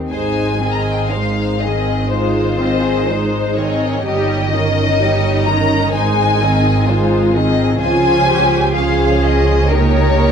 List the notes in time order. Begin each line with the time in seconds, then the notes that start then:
Already playing: C4
0.11 G#1 G#3 D#4 C5 G#5
0.60 D#3 C4 G#4 D#5
0.73 A#5
0.82 G#5
0.92 G5
1.00 G#5
1.10 G#3 D#4 C5 F5
1.60 D#3 C4 G#4 D#5
2.08 G#3 D#4 F4 C5
2.57 D#3 C4 G#4 D#5
3.07 G#3 D#4 C5
3.55 D#3 C4 G#4 C#5 D#5
4.04 G1 G3 D#4 G4 C#5 D#5
4.52 D#3 C#4 D#4 A#4 D#5
5.00 G3 D#4 G4 C#5
5.46 D#3 C#4 A#4 D#5 A#5
5.93 G#1 G#3 D#4 C5 G#5
6.41 D#3 C4 G#4 D#5
6.88 G#3 D#4 F4 C5
7.34 D#3 C4 D#4 G#4 D#5
7.80 C#2 F3 C#4 F4 G#4 C5 G#5
8.28 G4
8.75 F3 C#4 G#4 C5 F5
9.23 D#5
9.71 A#3 D#4 G4 A#4 C#5